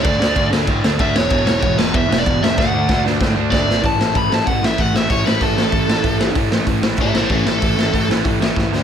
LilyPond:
<<
  \new Staff \with { instrumentName = "Lead electric guitar" } { \time 4/4 \key a \major \tempo 4 = 190 d''4. r4. e''8 cis''8~ | cis''4 cis''8 b'8 e''8. d''8. e''8 | fis''4. r4. d''4 | a''4 b''8 a''8 fis''8 e''8 fis''8 e''8 |
cis''8 b'8 a'2. | r2 <g' e''>8 <e' c''>8 <cis' a'>8 a'8~ | a'4. r2 r8 | }
  \new Staff \with { instrumentName = "Overdriven electric guitar" } { \clef bass \time 4/4 \key a \major <d a d'>8 <d a d'>8 <d a d'>8 <d a d'>8 <d a d'>8 <d a d'>8 <d a d'>8 <e, b, e>8 | <e, b, e>8 <e, b, e>8 <e, b, e>8 <e, b, e>8 <e, b, e>8 <e, b, e>8 <e, b, e>8 <e, b, e>8 | <d a d'>8 <d a d'>8 <d a d'>8 <d a d'>8 <d a d'>8 <d a d'>8 <d a d'>8 <d a d'>8 | <a, e a>8 <a, e a>8 <a, e a>8 <a, e a>8 <a, e a>8 <a, e a>8 <a, e a>8 <a, e a>8 |
<a, e a>8 <a, e a>8 <a, e a>8 <a, e a>8 <a, e a>8 <a, e a>8 <a, e a>8 <a, e a>8 | <a, e a>8 <a, e a>8 <a, e a>8 <a, e a>8 <a, e a>8 <a, e a>8 <a, e a>8 <a, e a>8 | <a, e a>8 <a, e a>8 <a, e a>8 <a, e a>8 <a, e a>8 <a, e a>8 <a, e a>8 <d a d'>8 | }
  \new Staff \with { instrumentName = "Picked electric bass" } { \clef bass \time 4/4 \key a \major d,8 d,8 d,8 d,8 a,8 d,8 d,8 e,,8 | e,,8 e,,8 e,,8 e,,8 e,8 e,,8 e,,8 e,,8 | d,8 d,8 d,8 d,8 a,8 d,8 d,8 gis,,8 | a,,8 a,,8 a,,8 a,,8 a,,8 a,,8 a,,8 a,,8 |
a,,8 a,,8 a,,8 a,,8 a,,4 a,,4 | a,,8 a,,8 a,,8 a,,8 a,,8 a,,8 a,,8 a,,8 | a,,8 a,,8 a,,8 a,,8 a,,4 a,,8 d,8 | }
  \new DrumStaff \with { instrumentName = "Drums" } \drummode { \time 4/4 <cymc bd>8 sn8 <cymc bd>8 sn8 <cymc bd>8 sn8 <cymc bd>8 sn8 | <cymc bd>8 sn8 <cymc bd>8 sn8 <cymc bd>8 sn8 <cymc bd>8 sn8 | <bd sn>4 <bd sn>8 sn8 <bd sn>4 <bd sn>8 sn8 | <hho bd>8 sn8 <hho bd>8 sn8 <hho bd>8 sn8 <hho bd>8 sn8 |
<hho bd>8 sn8 <hho bd>8 sn8 <hho bd>8 sn8 <hho bd>8 sn8 | <hho bd>8 sn8 <hho bd>8 sn8 <hho bd>8 sn8 <hho bd>8 sn8 | <hho bd>8 sn8 <hho bd>8 sn8 <hho bd>8 sn8 <bd sn>8 sn8 | }
>>